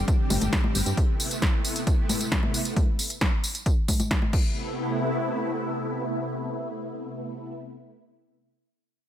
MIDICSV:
0, 0, Header, 1, 4, 480
1, 0, Start_track
1, 0, Key_signature, 0, "minor"
1, 0, Tempo, 447761
1, 1044, Time_signature, 4, 2, 24, 8
1, 9738, End_track
2, 0, Start_track
2, 0, Title_t, "Analog synth pad"
2, 0, Program_c, 0, 89
2, 84, Note_on_c, 0, 50, 94
2, 84, Note_on_c, 0, 60, 91
2, 84, Note_on_c, 0, 67, 93
2, 85, Note_on_c, 0, 55, 92
2, 168, Note_off_c, 0, 50, 0
2, 168, Note_off_c, 0, 55, 0
2, 168, Note_off_c, 0, 60, 0
2, 168, Note_off_c, 0, 67, 0
2, 205, Note_on_c, 0, 55, 91
2, 206, Note_on_c, 0, 50, 90
2, 206, Note_on_c, 0, 60, 91
2, 206, Note_on_c, 0, 67, 94
2, 373, Note_off_c, 0, 50, 0
2, 373, Note_off_c, 0, 55, 0
2, 373, Note_off_c, 0, 60, 0
2, 373, Note_off_c, 0, 67, 0
2, 445, Note_on_c, 0, 55, 90
2, 445, Note_on_c, 0, 60, 90
2, 445, Note_on_c, 0, 67, 89
2, 446, Note_on_c, 0, 50, 88
2, 612, Note_off_c, 0, 67, 0
2, 613, Note_off_c, 0, 50, 0
2, 613, Note_off_c, 0, 55, 0
2, 613, Note_off_c, 0, 60, 0
2, 684, Note_on_c, 0, 60, 94
2, 685, Note_on_c, 0, 50, 95
2, 685, Note_on_c, 0, 55, 95
2, 685, Note_on_c, 0, 67, 90
2, 852, Note_off_c, 0, 60, 0
2, 853, Note_off_c, 0, 50, 0
2, 853, Note_off_c, 0, 55, 0
2, 853, Note_off_c, 0, 67, 0
2, 923, Note_on_c, 0, 50, 89
2, 923, Note_on_c, 0, 55, 91
2, 923, Note_on_c, 0, 60, 93
2, 923, Note_on_c, 0, 67, 90
2, 1007, Note_off_c, 0, 55, 0
2, 1008, Note_off_c, 0, 50, 0
2, 1008, Note_off_c, 0, 60, 0
2, 1008, Note_off_c, 0, 67, 0
2, 1043, Note_on_c, 0, 57, 91
2, 1043, Note_on_c, 0, 59, 91
2, 1043, Note_on_c, 0, 64, 93
2, 1044, Note_on_c, 0, 48, 91
2, 1211, Note_off_c, 0, 57, 0
2, 1211, Note_off_c, 0, 64, 0
2, 1212, Note_off_c, 0, 48, 0
2, 1212, Note_off_c, 0, 59, 0
2, 1282, Note_on_c, 0, 48, 91
2, 1282, Note_on_c, 0, 59, 90
2, 1282, Note_on_c, 0, 64, 91
2, 1283, Note_on_c, 0, 57, 94
2, 1451, Note_off_c, 0, 48, 0
2, 1451, Note_off_c, 0, 57, 0
2, 1451, Note_off_c, 0, 59, 0
2, 1451, Note_off_c, 0, 64, 0
2, 1522, Note_on_c, 0, 57, 93
2, 1522, Note_on_c, 0, 59, 91
2, 1523, Note_on_c, 0, 48, 95
2, 1523, Note_on_c, 0, 64, 94
2, 1691, Note_off_c, 0, 48, 0
2, 1691, Note_off_c, 0, 57, 0
2, 1691, Note_off_c, 0, 59, 0
2, 1691, Note_off_c, 0, 64, 0
2, 1762, Note_on_c, 0, 57, 90
2, 1762, Note_on_c, 0, 64, 91
2, 1763, Note_on_c, 0, 48, 92
2, 1763, Note_on_c, 0, 59, 88
2, 1931, Note_off_c, 0, 48, 0
2, 1931, Note_off_c, 0, 57, 0
2, 1931, Note_off_c, 0, 59, 0
2, 1931, Note_off_c, 0, 64, 0
2, 2002, Note_on_c, 0, 59, 92
2, 2002, Note_on_c, 0, 64, 91
2, 2003, Note_on_c, 0, 48, 92
2, 2003, Note_on_c, 0, 57, 95
2, 2087, Note_off_c, 0, 48, 0
2, 2087, Note_off_c, 0, 57, 0
2, 2087, Note_off_c, 0, 59, 0
2, 2087, Note_off_c, 0, 64, 0
2, 2123, Note_on_c, 0, 48, 92
2, 2123, Note_on_c, 0, 57, 93
2, 2123, Note_on_c, 0, 59, 92
2, 2123, Note_on_c, 0, 64, 92
2, 2291, Note_off_c, 0, 48, 0
2, 2291, Note_off_c, 0, 57, 0
2, 2291, Note_off_c, 0, 64, 0
2, 2292, Note_off_c, 0, 59, 0
2, 2364, Note_on_c, 0, 48, 89
2, 2364, Note_on_c, 0, 57, 91
2, 2364, Note_on_c, 0, 59, 90
2, 2364, Note_on_c, 0, 64, 88
2, 2532, Note_off_c, 0, 48, 0
2, 2532, Note_off_c, 0, 57, 0
2, 2532, Note_off_c, 0, 59, 0
2, 2532, Note_off_c, 0, 64, 0
2, 2603, Note_on_c, 0, 57, 92
2, 2603, Note_on_c, 0, 64, 89
2, 2604, Note_on_c, 0, 48, 93
2, 2604, Note_on_c, 0, 59, 91
2, 2772, Note_off_c, 0, 48, 0
2, 2772, Note_off_c, 0, 57, 0
2, 2772, Note_off_c, 0, 59, 0
2, 2772, Note_off_c, 0, 64, 0
2, 2842, Note_on_c, 0, 57, 90
2, 2843, Note_on_c, 0, 48, 89
2, 2843, Note_on_c, 0, 59, 91
2, 2843, Note_on_c, 0, 64, 92
2, 2927, Note_off_c, 0, 48, 0
2, 2927, Note_off_c, 0, 57, 0
2, 2927, Note_off_c, 0, 59, 0
2, 2927, Note_off_c, 0, 64, 0
2, 4643, Note_on_c, 0, 48, 81
2, 4643, Note_on_c, 0, 59, 72
2, 4644, Note_on_c, 0, 57, 73
2, 4644, Note_on_c, 0, 64, 87
2, 8072, Note_off_c, 0, 48, 0
2, 8072, Note_off_c, 0, 57, 0
2, 8072, Note_off_c, 0, 59, 0
2, 8073, Note_off_c, 0, 64, 0
2, 9738, End_track
3, 0, Start_track
3, 0, Title_t, "FM bass"
3, 0, Program_c, 1, 39
3, 323, Note_on_c, 1, 31, 96
3, 396, Note_off_c, 1, 31, 0
3, 443, Note_on_c, 1, 31, 83
3, 516, Note_off_c, 1, 31, 0
3, 804, Note_on_c, 1, 31, 104
3, 876, Note_off_c, 1, 31, 0
3, 923, Note_on_c, 1, 43, 90
3, 996, Note_off_c, 1, 43, 0
3, 9738, End_track
4, 0, Start_track
4, 0, Title_t, "Drums"
4, 84, Note_on_c, 9, 36, 115
4, 85, Note_on_c, 9, 42, 68
4, 85, Note_on_c, 9, 54, 35
4, 191, Note_off_c, 9, 36, 0
4, 192, Note_off_c, 9, 42, 0
4, 192, Note_off_c, 9, 54, 0
4, 324, Note_on_c, 9, 46, 104
4, 324, Note_on_c, 9, 54, 82
4, 324, Note_on_c, 9, 63, 83
4, 432, Note_off_c, 9, 46, 0
4, 432, Note_off_c, 9, 54, 0
4, 432, Note_off_c, 9, 63, 0
4, 444, Note_on_c, 9, 42, 64
4, 444, Note_on_c, 9, 54, 43
4, 444, Note_on_c, 9, 63, 66
4, 551, Note_off_c, 9, 42, 0
4, 551, Note_off_c, 9, 54, 0
4, 551, Note_off_c, 9, 63, 0
4, 564, Note_on_c, 9, 36, 117
4, 565, Note_on_c, 9, 38, 106
4, 565, Note_on_c, 9, 42, 65
4, 565, Note_on_c, 9, 54, 33
4, 671, Note_off_c, 9, 36, 0
4, 672, Note_off_c, 9, 38, 0
4, 672, Note_off_c, 9, 42, 0
4, 672, Note_off_c, 9, 54, 0
4, 684, Note_on_c, 9, 63, 69
4, 791, Note_off_c, 9, 63, 0
4, 804, Note_on_c, 9, 46, 105
4, 804, Note_on_c, 9, 54, 77
4, 911, Note_off_c, 9, 46, 0
4, 911, Note_off_c, 9, 54, 0
4, 924, Note_on_c, 9, 42, 65
4, 924, Note_on_c, 9, 54, 44
4, 1031, Note_off_c, 9, 42, 0
4, 1031, Note_off_c, 9, 54, 0
4, 1044, Note_on_c, 9, 36, 116
4, 1044, Note_on_c, 9, 42, 68
4, 1044, Note_on_c, 9, 54, 34
4, 1151, Note_off_c, 9, 36, 0
4, 1152, Note_off_c, 9, 42, 0
4, 1152, Note_off_c, 9, 54, 0
4, 1284, Note_on_c, 9, 46, 98
4, 1284, Note_on_c, 9, 54, 78
4, 1391, Note_off_c, 9, 46, 0
4, 1391, Note_off_c, 9, 54, 0
4, 1404, Note_on_c, 9, 42, 69
4, 1404, Note_on_c, 9, 54, 45
4, 1511, Note_off_c, 9, 42, 0
4, 1511, Note_off_c, 9, 54, 0
4, 1524, Note_on_c, 9, 36, 116
4, 1524, Note_on_c, 9, 38, 115
4, 1524, Note_on_c, 9, 42, 69
4, 1524, Note_on_c, 9, 54, 34
4, 1631, Note_off_c, 9, 36, 0
4, 1631, Note_off_c, 9, 38, 0
4, 1631, Note_off_c, 9, 42, 0
4, 1631, Note_off_c, 9, 54, 0
4, 1764, Note_on_c, 9, 46, 101
4, 1764, Note_on_c, 9, 54, 78
4, 1871, Note_off_c, 9, 46, 0
4, 1871, Note_off_c, 9, 54, 0
4, 1884, Note_on_c, 9, 42, 72
4, 1884, Note_on_c, 9, 54, 47
4, 1992, Note_off_c, 9, 42, 0
4, 1992, Note_off_c, 9, 54, 0
4, 2004, Note_on_c, 9, 36, 115
4, 2004, Note_on_c, 9, 42, 71
4, 2004, Note_on_c, 9, 54, 34
4, 2111, Note_off_c, 9, 36, 0
4, 2111, Note_off_c, 9, 42, 0
4, 2111, Note_off_c, 9, 54, 0
4, 2244, Note_on_c, 9, 46, 106
4, 2244, Note_on_c, 9, 54, 82
4, 2244, Note_on_c, 9, 63, 83
4, 2352, Note_off_c, 9, 46, 0
4, 2352, Note_off_c, 9, 54, 0
4, 2352, Note_off_c, 9, 63, 0
4, 2364, Note_on_c, 9, 42, 67
4, 2364, Note_on_c, 9, 54, 46
4, 2471, Note_off_c, 9, 42, 0
4, 2471, Note_off_c, 9, 54, 0
4, 2484, Note_on_c, 9, 36, 111
4, 2485, Note_on_c, 9, 38, 114
4, 2485, Note_on_c, 9, 42, 68
4, 2591, Note_off_c, 9, 36, 0
4, 2592, Note_off_c, 9, 38, 0
4, 2592, Note_off_c, 9, 42, 0
4, 2604, Note_on_c, 9, 63, 70
4, 2712, Note_off_c, 9, 63, 0
4, 2724, Note_on_c, 9, 46, 102
4, 2724, Note_on_c, 9, 54, 81
4, 2831, Note_off_c, 9, 46, 0
4, 2831, Note_off_c, 9, 54, 0
4, 2844, Note_on_c, 9, 42, 71
4, 2844, Note_on_c, 9, 54, 47
4, 2951, Note_off_c, 9, 42, 0
4, 2951, Note_off_c, 9, 54, 0
4, 2964, Note_on_c, 9, 36, 112
4, 2965, Note_on_c, 9, 42, 71
4, 2965, Note_on_c, 9, 54, 31
4, 2965, Note_on_c, 9, 63, 58
4, 3071, Note_off_c, 9, 36, 0
4, 3072, Note_off_c, 9, 42, 0
4, 3072, Note_off_c, 9, 54, 0
4, 3072, Note_off_c, 9, 63, 0
4, 3205, Note_on_c, 9, 46, 102
4, 3205, Note_on_c, 9, 54, 79
4, 3312, Note_off_c, 9, 46, 0
4, 3312, Note_off_c, 9, 54, 0
4, 3325, Note_on_c, 9, 42, 72
4, 3325, Note_on_c, 9, 54, 45
4, 3432, Note_off_c, 9, 42, 0
4, 3432, Note_off_c, 9, 54, 0
4, 3443, Note_on_c, 9, 36, 123
4, 3444, Note_on_c, 9, 38, 125
4, 3444, Note_on_c, 9, 42, 73
4, 3444, Note_on_c, 9, 54, 33
4, 3551, Note_off_c, 9, 36, 0
4, 3551, Note_off_c, 9, 38, 0
4, 3551, Note_off_c, 9, 42, 0
4, 3551, Note_off_c, 9, 54, 0
4, 3684, Note_on_c, 9, 46, 101
4, 3684, Note_on_c, 9, 54, 75
4, 3791, Note_off_c, 9, 46, 0
4, 3791, Note_off_c, 9, 54, 0
4, 3804, Note_on_c, 9, 42, 70
4, 3804, Note_on_c, 9, 54, 44
4, 3911, Note_off_c, 9, 42, 0
4, 3911, Note_off_c, 9, 54, 0
4, 3923, Note_on_c, 9, 36, 112
4, 3924, Note_on_c, 9, 42, 71
4, 3924, Note_on_c, 9, 54, 34
4, 4031, Note_off_c, 9, 36, 0
4, 4031, Note_off_c, 9, 42, 0
4, 4031, Note_off_c, 9, 54, 0
4, 4164, Note_on_c, 9, 36, 65
4, 4164, Note_on_c, 9, 46, 108
4, 4164, Note_on_c, 9, 54, 84
4, 4164, Note_on_c, 9, 63, 78
4, 4271, Note_off_c, 9, 36, 0
4, 4271, Note_off_c, 9, 46, 0
4, 4271, Note_off_c, 9, 54, 0
4, 4271, Note_off_c, 9, 63, 0
4, 4284, Note_on_c, 9, 42, 71
4, 4284, Note_on_c, 9, 54, 44
4, 4284, Note_on_c, 9, 63, 63
4, 4391, Note_off_c, 9, 42, 0
4, 4391, Note_off_c, 9, 54, 0
4, 4391, Note_off_c, 9, 63, 0
4, 4404, Note_on_c, 9, 36, 120
4, 4405, Note_on_c, 9, 38, 118
4, 4405, Note_on_c, 9, 42, 65
4, 4511, Note_off_c, 9, 36, 0
4, 4512, Note_off_c, 9, 38, 0
4, 4512, Note_off_c, 9, 42, 0
4, 4524, Note_on_c, 9, 63, 64
4, 4631, Note_off_c, 9, 63, 0
4, 4644, Note_on_c, 9, 36, 116
4, 4644, Note_on_c, 9, 49, 89
4, 4751, Note_off_c, 9, 36, 0
4, 4751, Note_off_c, 9, 49, 0
4, 9738, End_track
0, 0, End_of_file